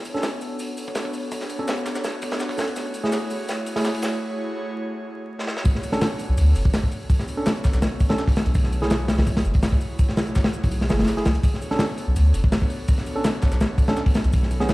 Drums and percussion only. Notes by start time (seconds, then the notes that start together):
0.05 open hi-hat, shaker
0.16 snare
0.23 snare, open hi-hat, shaker
0.41 open hi-hat, shaker
0.59 open hi-hat, shaker
0.77 open hi-hat, shaker
0.88 kick
0.95 snare, open hi-hat, shaker
1.05 kick
1.14 open hi-hat, shaker
1.32 kick, open hi-hat, shaker
1.41 snare
1.50 open hi-hat, shaker
1.68 snare, open hi-hat, shaker
1.77 closed hi-hat
1.86 kick, snare, open hi-hat, shaker
1.95 snare, shaker
2.04 snare, open hi-hat, shaker
2.22 kick, open hi-hat, shaker
2.31 snare, open hi-hat
2.40 snare, shaker
2.49 kick, open hi-hat
2.58 snare, open hi-hat, shaker
2.68 closed hi-hat
2.76 snare, open hi-hat, shaker
2.94 open hi-hat, shaker
3.05 snare
3.12 snare, open hi-hat, shaker
3.30 open hi-hat, shaker
3.49 snare, open hi-hat, shaker
3.66 open hi-hat, shaker
3.76 snare, open hi-hat
3.84 snare, open hi-hat, shaker
3.95 open hi-hat
4.02 snare, open hi-hat, shaker
5.39 snare
5.47 snare
5.57 snare
5.65 kick, open hi-hat, shaker
5.75 snare
5.83 open hi-hat, shaker
5.92 snare
6.01 snare, open hi-hat, shaker
6.19 open hi-hat, shaker
6.38 open hi-hat, shaker
6.56 open hi-hat, shaker
6.65 kick
6.74 snare, open hi-hat, shaker
6.83 kick
6.92 open hi-hat, shaker
7.10 kick, open hi-hat, shaker
7.19 snare
7.28 open hi-hat, shaker
7.46 snare, open hi-hat, shaker
7.56 closed hi-hat
7.64 kick, snare, open hi-hat, shaker
7.74 snare, shaker
7.82 snare, open hi-hat, shaker
8.00 kick, open hi-hat, shaker
8.09 snare, open hi-hat
8.18 snare, shaker
8.28 kick, open hi-hat
8.36 snare, open hi-hat, shaker
8.46 closed hi-hat
8.54 kick, open hi-hat, shaker
8.64 snare
8.73 open hi-hat, shaker
8.82 snare
8.90 snare, open hi-hat, shaker
9.08 snare, open hi-hat, shaker
9.18 snare, open hi-hat
9.26 kick, open hi-hat, shaker
9.37 snare, open hi-hat
9.45 closed hi-hat, shaker
9.54 kick, open hi-hat
9.63 snare, open hi-hat, shaker
9.72 kick
9.81 open hi-hat, shaker
9.99 kick, open hi-hat, shaker
10.09 snare
10.17 snare, open hi-hat, shaker
10.27 closed hi-hat
10.35 kick, snare, open hi-hat, shaker
10.44 snare, open hi-hat
10.53 closed hi-hat, shaker
10.63 kick, open hi-hat
10.72 open hi-hat, shaker
10.81 snare
10.90 snare, open hi-hat, shaker
10.99 snare, open hi-hat
11.03 snare, open hi-hat
11.08 snare, open hi-hat, shaker
11.17 snare
11.25 snare, open hi-hat, shaker
11.35 closed hi-hat
11.44 kick, open hi-hat, shaker
11.54 snare
11.62 open hi-hat, shaker
11.71 snare
11.79 snare, open hi-hat, shaker
11.98 open hi-hat, shaker
12.16 open hi-hat, shaker
12.34 open hi-hat, shaker
12.44 kick
12.52 snare, open hi-hat, shaker
12.62 kick
12.70 open hi-hat, shaker
12.88 kick, open hi-hat, shaker
12.98 snare
13.06 open hi-hat, shaker
13.24 snare, open hi-hat, shaker
13.35 closed hi-hat
13.42 kick, snare, open hi-hat, shaker
13.52 snare, shaker
13.61 snare, open hi-hat, shaker
13.78 kick, open hi-hat, shaker
13.88 snare, open hi-hat
13.97 snare, shaker
14.06 kick, open hi-hat
14.15 snare, open hi-hat, shaker
14.24 closed hi-hat
14.33 kick, open hi-hat, shaker
14.43 snare
14.51 open hi-hat, shaker
14.60 snare
14.69 snare, open hi-hat, shaker